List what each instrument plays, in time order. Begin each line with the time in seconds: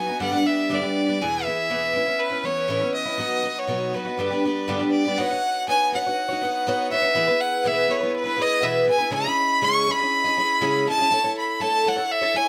Already playing: fiddle G#5
0.07 twelve-string acoustic guitar B3 D#4 F#4
0.20 twelve-string acoustic guitar G2 D3 G3 B3 D4 G4, fiddle F#5
0.32 twelve-string acoustic guitar B3 D4 G4
0.36 twelve-string acoustic guitar G3
0.43 twelve-string acoustic guitar G3 B3 D4 G4, fiddle E5
0.69 twelve-string acoustic guitar G2 D3 G3 B3 D4 G4
0.74 fiddle D5
0.82 twelve-string acoustic guitar G3 B3 D4 G4
1.06 twelve-string acoustic guitar B3 D4 G4
1.10 twelve-string acoustic guitar G3
1.21 twelve-string acoustic guitar E2 B2 E3 B3 E4 G#4, fiddle G#5
1.44 twelve-string acoustic guitar E3 B3 E4, fiddle E5
1.49 twelve-string acoustic guitar G#4
1.70 twelve-string acoustic guitar E2 B2 E3 B3 E4 G#4
1.93 twelve-string acoustic guitar E3 B3 C#4 E4
2.06 twelve-string acoustic guitar B3 C#4 E4
2.19 fiddle B4
2.30 twelve-string acoustic guitar C#4 E4
2.34 twelve-string acoustic guitar B3
2.43 twelve-string acoustic guitar E3 B3 C#4 E4, fiddle C#5
2.68 twelve-string acoustic guitar A2 E3 B3 C#4 E4
2.81 twelve-string acoustic guitar B3 C#4 E4
2.94 fiddle D#5
3.05 twelve-string acoustic guitar C#4 E4
3.09 twelve-string acoustic guitar B3
3.18 twelve-string acoustic guitar B2 F#3 B3 D#4 F#4
3.42 twelve-string acoustic guitar F#3 B3 D#4 F#4
3.59 fiddle C#5
3.67 twelve-string acoustic guitar B2 F#3 B3 D#4 F#4
3.93 twelve-string acoustic guitar F#3 B3 D#4 F#4, fiddle B4
4.05 twelve-string acoustic guitar B3 D#4 F#4
4.17 twelve-string acoustic guitar G2 D3 G3 B3 D4 G4
4.30 twelve-string acoustic guitar G3 B3 D4 G4
4.44 twelve-string acoustic guitar G3 B3 D4 G4
4.68 twelve-string acoustic guitar G2 D3 G3 B3 D4 G4
4.79 twelve-string acoustic guitar G3 B3 D4 G4
4.91 fiddle D5
5.05 twelve-string acoustic guitar G3 B3 D4 G4
5.18 twelve-string acoustic guitar B3 D#4 F#4 C#5, fiddle F#5
5.30 twelve-string acoustic guitar D#4 F#4 C#5
5.68 twelve-string acoustic guitar B3 D#4 F#4 C#5, fiddle G#5
5.92 twelve-string acoustic guitar B3 D#4 F#4 C#5, fiddle F#5
6.06 twelve-string acoustic guitar D#4 F#4 C#5
6.29 twelve-string acoustic guitar F#4 C#5
6.33 twelve-string acoustic guitar D#4
6.41 twelve-string acoustic guitar B3 D#4 F#4 C#5
6.67 twelve-string acoustic guitar B3 D#4 F#4 C#5
6.90 twelve-string acoustic guitar B3 D#4 F#4 C#5, fiddle E5
7.02 twelve-string acoustic guitar F#4 C#5
7.06 twelve-string acoustic guitar D#4
7.15 twelve-string acoustic guitar B2 E3 B3 E4 G#4 B4
7.27 twelve-string acoustic guitar B3 E4 G#4 B4
7.41 fiddle F#5
7.64 twelve-string acoustic guitar B2 E3 B3 E4 G#4 B4, fiddle E5
7.88 twelve-string acoustic guitar B3 E4 G#4 B4, fiddle C#5
8.00 twelve-string acoustic guitar B3 E4 G#4 B4
8.17 fiddle B4
8.24 twelve-string acoustic guitar B3 E4 G#4 B4
8.36 twelve-string acoustic guitar B3 E4 G#4 B4
8.42 fiddle D#5
8.62 twelve-string acoustic guitar B2 E3 B3 E4 G#4 B4, fiddle E5
8.85 twelve-string acoustic guitar B3 E4 G#4 B4
8.90 fiddle G#5
8.98 twelve-string acoustic guitar B3 E4 G#4 B4
9.10 twelve-string acoustic guitar C#3 G#3 C#4 E4 G#4 D#5, fiddle B5
9.24 twelve-string acoustic guitar C#4 E4 G#4 D#5
9.62 twelve-string acoustic guitar C#3 G#3 C#4 E4 G#4 D#5, fiddle C#6
9.87 twelve-string acoustic guitar C#4 E4 G#4 D#5, fiddle B5
9.99 twelve-string acoustic guitar C#4 E4 G#4 D#5
10.24 twelve-string acoustic guitar C#4 E4 G#4 D#5
10.37 twelve-string acoustic guitar C#4 E4 G#4 D#5
10.61 twelve-string acoustic guitar C#3 G#3 C#4 E4 G#4 D#5
10.87 twelve-string acoustic guitar C#4 E4 G#4 D#5, fiddle A5
10.98 twelve-string acoustic guitar C#4 E4 G#4 D#5
11.11 twelve-string acoustic guitar A3 E4 A4 C#5
11.24 twelve-string acoustic guitar E4 A4 C#5
11.38 fiddle B5
11.60 twelve-string acoustic guitar A3 E4 A4 C#5, fiddle A5
11.85 twelve-string acoustic guitar A3 E4 A4 C#5, fiddle F#5
11.96 twelve-string acoustic guitar A4 C#5
12.00 twelve-string acoustic guitar E4
12.11 fiddle E5
12.21 twelve-string acoustic guitar E4 A4 C#5
12.34 twelve-string acoustic guitar A3 E4 A4 C#5, fiddle G#5